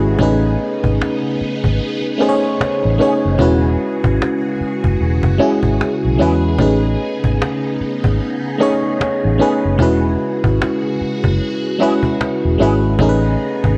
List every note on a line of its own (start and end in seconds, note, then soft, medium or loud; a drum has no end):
0.00 0.15 G#1 loud
0.00 12.95 C#3 medium
0.00 0.21 G#3 medium
0.00 0.19 C#4 medium
0.00 0.21 E4 medium
0.00 0.16 F#4 medium
0.00 0.20 F#4 medium
0.00 0.20 G4 medium
0.00 0.21 G#4 loud
0.00 12.94 G#4 medium
0.00 0.15 B4 loud
0.00 cajon slap soft
0.18 0.55 A1 loud
0.18 1.54 A3 medium
0.18 3.36 B3 medium
0.18 1.54 C#4 medium
0.18 3.35 D#4 medium
0.18 1.55 D#4 medium
0.18 1.55 G#4 medium
0.18 cajon bass medium
0.23 1.56 B4 loud
0.44 cajon slap soft
0.46 cajon slap soft
0.59 cajon slap soft
0.84 0.98 G#1 medium
0.84 cajon bass loud
1.01 cajon slap loud
1.23 cajon slap soft
1.36 cajon slap soft
1.41 muted fingered electric bass stroke soft
1.64 1.78 G#1 medium
1.64 cajon bass medium
1.64 cajon slap soft
1.78 cajon slap soft
2.01 cajon slap soft
2.18 2.32 D#3 medium
2.18 2.88 A3 medium
2.18 2.33 B3 medium
2.18 2.88 C#4 medium
2.18 2.33 C#4 medium
2.18 2.89 D#4 medium
2.18 2.89 G#4 medium
2.18 cajon slap soft
2.22 2.33 G#4 medium
2.22 2.29 C5 medium
2.29 2.93 C#5 loud
2.42 cajon slap soft
2.60 muted fingered electric bass stroke soft
2.60 cajon slap loud
2.83 2.98 A1 medium
2.83 cajon slap soft
2.98 3.12 D#3 medium
2.98 3.33 A3 medium
2.98 3.12 B3 medium
2.98 3.33 C#4 medium
2.98 3.13 C#4 medium
2.98 3.34 D#4 medium
2.98 3.35 G#4 medium
2.98 3.13 G#4 medium
2.98 cajon slap soft
3.02 3.35 C#5 medium
3.23 3.38 F#1 medium
3.23 cajon slap soft
3.38 3.75 E1 loud
3.38 4.73 G#3 medium
3.38 4.74 C#4 medium
3.38 4.74 E4 medium
3.38 6.56 F#4 medium
3.38 4.75 F#4 medium
3.38 4.75 B4 loud
3.38 cajon bass loud
3.64 cajon slap soft
3.67 cajon slap soft
3.79 cajon slap soft
4.04 4.18 G#1 medium
4.04 cajon bass loud
4.22 cajon slap loud
4.43 cajon slap soft
4.56 cajon slap soft
4.61 muted fingered electric bass stroke soft
4.84 4.98 F#1 medium
4.84 cajon bass medium
4.84 cajon slap soft
4.98 5.22 E1 medium
4.98 cajon slap soft
5.23 5.37 F#1 loud
5.23 cajon bass medium
5.38 5.52 F#3 medium
5.38 6.08 G#3 medium
5.38 6.08 C#4 medium
5.38 5.52 C#4 medium
5.38 6.09 E4 medium
5.38 5.52 E4 medium
5.38 6.09 F#4 medium
5.38 5.53 G#4 medium
5.38 cajon slap soft
5.42 6.10 G#4 loud
5.63 5.77 G#1 medium
5.63 cajon bass medium
5.81 muted fingered electric bass stroke soft
5.81 cajon slap medium
6.03 6.18 B1 medium
6.03 cajon slap soft
6.18 6.56 E2 medium
6.18 6.32 F#3 medium
6.18 6.53 G#3 medium
6.18 6.54 C#4 medium
6.18 6.33 C#4 medium
6.18 6.54 E4 medium
6.18 6.33 E4 medium
6.18 6.55 F#4 medium
6.18 6.33 G#4 medium
6.18 6.55 B4 loud
6.44 cajon slap soft
6.58 6.95 A1 medium
6.58 7.94 A3 medium
6.58 9.76 B3 medium
6.58 7.94 C#4 medium
6.58 9.76 D#4 medium
6.58 7.95 D#4 medium
6.58 7.95 G#4 medium
6.58 7.96 B4 medium
6.58 cajon bass loud
6.84 cajon slap soft
6.87 cajon slap soft
6.99 cajon slap soft
7.24 7.38 G#1 medium
7.24 cajon bass medium
7.42 cajon slap loud
7.63 cajon slap soft
7.76 cajon slap soft
7.81 muted fingered electric bass stroke soft
8.04 8.18 G#1 medium
8.04 cajon bass medium
8.04 cajon slap soft
8.18 cajon slap soft
8.41 cajon slap soft
8.58 8.72 D#3 medium
8.58 9.28 A3 medium
8.58 8.72 B3 medium
8.58 9.28 C#4 medium
8.58 8.73 C#4 medium
8.58 9.29 D#4 medium
8.58 9.29 G#4 medium
8.58 8.73 G#4 medium
8.58 cajon slap soft
8.63 9.30 C#5 loud
8.82 cajon slap soft
9.00 muted fingered electric bass stroke soft
9.00 cajon slap loud
9.23 9.38 A1 medium
9.23 cajon slap soft
9.38 9.52 D#3 medium
9.38 9.73 A3 medium
9.38 9.52 B3 medium
9.38 9.74 C#4 medium
9.38 9.53 C#4 medium
9.38 9.74 D#4 medium
9.38 9.75 G#4 medium
9.38 9.53 G#4 medium
9.38 cajon slap soft
9.42 9.75 B4 loud
9.63 9.80 F#1 medium
9.63 cajon slap soft
9.78 10.15 E1 loud
9.78 11.13 G#3 medium
9.78 11.14 C#4 medium
9.78 11.15 E4 medium
9.78 12.96 F#4 medium
9.78 11.15 F#4 medium
9.78 cajon bass loud
9.82 11.16 B4 loud
10.04 cajon slap soft
10.07 cajon slap soft
10.19 cajon slap soft
10.44 10.58 G#1 medium
10.44 cajon bass loud
10.62 cajon slap loud
10.83 cajon slap soft
10.96 cajon slap soft
11.01 muted fingered electric bass stroke soft
11.24 11.38 F#1 medium
11.24 cajon bass medium
11.24 cajon slap soft
11.38 cajon slap soft
11.61 cajon slap soft
11.78 11.92 F#3 medium
11.78 12.48 G#3 medium
11.78 12.48 C#4 medium
11.78 11.93 C#4 medium
11.78 12.49 E4 medium
11.78 11.93 E4 medium
11.78 12.49 F#4 medium
11.78 11.93 G#4 medium
11.78 cajon slap soft
11.83 12.50 B4 loud
12.03 cajon bass medium
12.21 cajon slap loud
12.43 12.58 E1 medium
12.43 cajon slap soft
12.58 12.96 G#1 loud
12.58 12.72 F#3 medium
12.58 12.93 G#3 medium
12.58 12.94 C#4 medium
12.58 12.73 C#4 medium
12.58 12.94 E4 medium
12.58 12.73 E4 medium
12.58 12.95 F#4 medium
12.58 12.73 G#4 medium
12.58 cajon slap soft
12.63 12.95 B4 loud
12.84 cajon slap soft
12.98 13.35 A1 loud
12.98 13.78 C#3 medium
12.98 13.78 A3 medium
12.98 13.78 B3 medium
12.98 13.78 C#4 medium
12.98 13.78 D#4 medium
12.98 13.78 G#4 medium
12.98 cajon bass loud
13.03 13.09 A#4 medium
13.09 13.78 B4 loud
13.24 cajon slap soft
13.27 cajon slap soft
13.39 cajon slap soft
13.64 13.78 G#1 medium
13.64 cajon bass loud